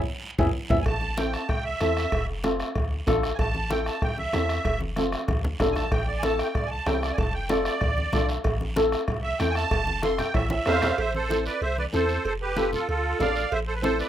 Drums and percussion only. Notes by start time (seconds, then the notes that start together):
0.38 bombo low, low conga, high timbale, long guiro
0.70 bombo low, low conga, high timbale, long guiro
0.86 bombo low, bombo rim, cowbell, high conga, long guiro
1.01 high conga
1.17 bombo rim, cowbell, high conga, short guiro
1.33 bombo rim, short guiro
1.49 bombo low, bombo rim, cowbell, high conga, long guiro
1.80 bombo rim, cowbell, high conga, short guiro
1.97 bombo rim, short guiro
2.12 bombo low, bombo rim, cowbell, high conga, long guiro
2.44 bombo rim, cowbell, high conga, short guiro
2.60 bombo rim, short guiro
2.75 bombo low, bombo rim, cowbell, high conga, long guiro
3.07 bombo low, bombo rim, cowbell, high conga, low conga, short guiro
3.23 bombo rim, short guiro
3.39 bombo low, bombo rim, cowbell, high conga, long guiro
3.55 high conga
3.70 bombo rim, cowbell, high conga, short guiro
3.86 bombo rim, short guiro
4.02 bombo low, bombo rim, cowbell, high conga, long guiro
4.18 high conga
4.33 bombo rim, cowbell, high conga, low timbale, short guiro
4.49 bombo rim, short guiro
4.65 bombo low, bombo rim, cowbell, high conga, long guiro
4.81 high conga
4.96 bombo rim, cowbell, high conga, short guiro
5.12 bombo rim, short guiro
5.28 bombo low, bombo rim, cowbell, high conga, long guiro
5.44 low conga
5.60 bombo low, bombo rim, cowbell, low conga, low timbale, short guiro
5.76 bombo rim, low conga, short guiro
5.92 bombo low, bombo rim, cowbell, high conga, long guiro
6.23 bombo rim, cowbell, high conga, short guiro
6.39 bombo rim, short guiro
6.55 bombo low, bombo rim, cowbell, high conga, long guiro
6.86 bombo rim, cowbell, high conga, low timbale, short guiro
7.03 bombo rim, short guiro
7.18 bombo low, bombo rim, cowbell, high conga, long guiro
7.49 bombo rim, cowbell, high conga, short guiro
7.65 bombo rim, short guiro
7.81 bombo low, bombo rim, cowbell, high conga, long guiro
7.98 high conga
8.13 bombo low, bombo rim, cowbell, high conga, low conga, short guiro
8.29 bombo rim, short guiro
8.44 bombo low, bombo rim, cowbell, high conga, long guiro
8.61 high conga
8.76 bombo rim, cowbell, high conga, short guiro
8.92 bombo rim, short guiro
9.08 bombo low, bombo rim, cowbell, high conga, long guiro
9.40 bombo rim, cowbell, high conga, short guiro
9.55 bombo rim, short guiro
9.71 bombo low, bombo rim, cowbell, high conga, long guiro
9.87 high conga
10.02 bombo rim, cowbell, high conga, short guiro
10.18 bombo rim, low conga, short guiro
10.34 bombo low, bombo rim, cowbell, high conga, high timbale, long guiro
10.50 high conga, high timbale
10.66 bombo rim, cowbell, low timbale, short guiro
10.82 bombo rim, low conga, low timbale, short guiro
10.98 cowbell, high conga, long guiro
11.15 high conga
11.30 cowbell, high conga, short guiro
11.46 short guiro
11.62 cowbell, high conga, long guiro
11.78 high conga
11.93 cowbell, high conga, short guiro
12.09 short guiro
12.25 cowbell, high conga, long guiro
12.57 cowbell, high conga, short guiro
12.72 low conga, short guiro
12.89 cowbell, high conga, long guiro
13.20 cowbell, high conga, low conga, low timbale, short guiro
13.36 short guiro
13.52 cowbell, high conga, long guiro
13.83 cowbell, high conga, short guiro
13.99 short guiro